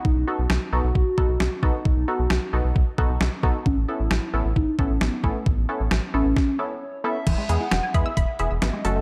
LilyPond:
<<
  \new Staff \with { instrumentName = "Analog polysynth" } { \time 4/4 \key e \major \tempo 4 = 133 r8 <b dis' fis' a'>8 r8 <b dis' fis' a'>8 r8 <b dis' fis' a'>8 r8 <b dis' fis' a'>8 | r8 <b dis' fis' a'>8 r8 <b dis' fis' a'>8 r8 <b dis' fis' a'>8 r8 <b dis' fis' a'>8 | r8 <b cis' e' a'>8 r8 <b cis' e' a'>8 r8 <b cis' e' a'>8 r8 <b cis' e' a'>8 | r8 <b cis' e' a'>8 r8 <b cis' e' a'>8 r8 <b cis' e' a'>8 r8 <b cis' e' a'>8 |
r8 <gis b e' gis'>8 r8 <gis b e' gis'>8 r8 <gis b e' gis'>8 r8 <a cis' fis' a'>8 | }
  \new Staff \with { instrumentName = "Soft synth lead" } { \time 4/4 \key e \major dis'8 fis'4 fis'2 dis'8 | dis'8 fis'4 r2 r8 | cis'8 e'4. dis'8 cis'8 b8 a8 | b4 r8 cis'8 cis'8 cis''8 cis''8 e''8~ |
e''8 fis''4 e''4. dis''4 | }
  \new Staff \with { instrumentName = "Synth arpeggio sound" } { \time 4/4 \key e \major r1 | r1 | r1 | r1 |
e16 gis16 b16 e'16 r16 gis''16 b''16 e'''16 b''16 r16 e''16 r16 b16 gis16 fis16 a16 | }
  \new Staff \with { instrumentName = "Analog synth bass" } { \clef bass \time 4/4 \key e \major b,,16 b,,16 r16 b,,16 b,,16 r16 b,,16 b,,16 b,,16 r16 b,,16 b,,16 b,,16 r16 b,,16 r16 | b,,16 b,,16 r16 b,,16 b,,16 r16 b,,16 b,,16 b,,16 r16 b,,16 b,,16 b,,16 r16 b,,16 r16 | a,,16 a,,16 r16 a,,16 a,,16 r16 a,,16 a,,16 a,,16 r16 a,,16 a,,16 a,,16 r16 a,,16 r16 | a,,16 a,,16 r16 a,,16 a,,16 r16 a,,16 a,,16 r2 |
e,,16 r16 e,16 r16 e,,16 r16 e,16 r16 e,,16 r16 e,,16 e,,16 gis,,16 r16 fis,,8 | }
  \new DrumStaff \with { instrumentName = "Drums" } \drummode { \time 4/4 bd4 sn4 bd8 bd8 sn8 bd8 | bd4 sn4 bd8 bd8 sn8 bd8 | bd4 sn4 bd8 bd8 sn8 bd8 | bd4 sn4 <bd sn>4 r4 |
<cymc hh bd>8 hh8 <hh sn>8 <hh bd>8 <hh bd>8 hh8 <hh sn>8 hh8 | }
>>